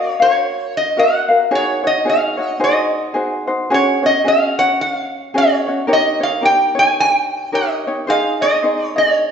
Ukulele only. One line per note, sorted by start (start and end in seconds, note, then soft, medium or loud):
0.00 0.20 F#4 medium
0.00 0.19 A#4 medium
0.00 0.20 D#5 medium
0.00 0.18 F5 medium
0.20 0.97 F#4 soft
0.20 0.97 A#4 soft
0.20 0.97 F5 medium
0.96 1.30 F#4 medium
0.96 1.29 A#4 medium
0.96 1.30 D#5 medium
0.96 1.27 F5 medium
1.28 1.51 F#4 soft
1.28 1.51 A#4 soft
1.28 1.51 F5 soft
1.51 1.84 D#4 medium
1.51 1.83 F#4 medium
1.51 1.84 G#4 medium
1.51 1.82 C#5 medium
1.84 2.04 D#4 soft
1.84 2.05 F#4 soft
1.84 2.06 C#5 soft
2.05 2.39 D#4 medium
2.05 2.38 F#4 medium
2.05 2.38 G#4 medium
2.05 2.36 C#5 medium
2.37 2.58 D#4 soft
2.37 2.59 F#4 soft
2.37 2.60 C#5 medium
2.60 3.14 D#4 medium
2.60 3.15 F#4 medium
2.60 3.14 G#4 medium
2.60 3.15 C5 medium
3.14 3.48 D#4 medium
3.14 3.46 F#4 medium
3.14 3.48 G#4 medium
3.14 3.46 C5 medium
3.47 3.71 D#4 soft
3.47 3.70 F#4 soft
3.47 3.70 C5 medium
3.70 4.04 C#4 medium
3.70 4.02 F#4 medium
3.70 4.03 G#4 medium
3.70 4.02 C#5 medium
4.03 4.24 C#4 soft
4.03 4.25 F#4 soft
4.03 4.25 C#5 soft
4.24 4.58 C#4 medium
4.24 4.59 F#4 medium
4.24 4.58 G#4 medium
4.24 4.57 C#5 medium
4.59 5.34 C#4 soft
4.59 5.34 F#4 soft
4.59 5.35 C#5 medium
5.34 5.68 C#4 medium
5.34 5.67 F#4 medium
5.34 5.67 G#4 medium
5.34 5.66 C#5 medium
5.67 5.88 C#4 soft
5.67 5.88 F#4 soft
5.67 5.88 C#5 soft
5.87 6.21 D#4 medium
5.87 6.20 G4 medium
5.87 6.21 A#4 medium
5.87 6.19 C#5 medium
6.20 6.41 D#4 soft
6.20 6.42 G4 soft
6.20 6.42 C#5 soft
6.41 6.76 D#4 medium
6.41 6.75 G4 medium
6.41 6.76 A#4 medium
6.41 6.74 C#5 medium
6.75 7.53 D#4 soft
6.75 7.53 G4 soft
6.75 7.52 C#5 medium
7.52 7.86 D#4 medium
7.52 7.87 G4 medium
7.52 7.86 A#4 medium
7.52 7.86 C#5 medium
7.87 8.07 D#4 soft
7.87 8.08 G4 soft
7.87 8.09 C#5 soft
8.07 8.41 D#4 medium
8.07 8.41 G#4 medium
8.07 8.41 C5 medium
8.07 8.40 D#5 medium
8.41 8.63 D#4 soft
8.41 8.63 G#4 soft
8.41 8.63 D#5 soft
8.63 8.96 D#4 medium
8.63 8.95 G#4 medium
8.63 8.96 C5 medium
8.63 8.95 D#5 medium
8.96 9.31 D#4 soft
8.96 9.31 G#4 soft
8.96 9.31 D#5 medium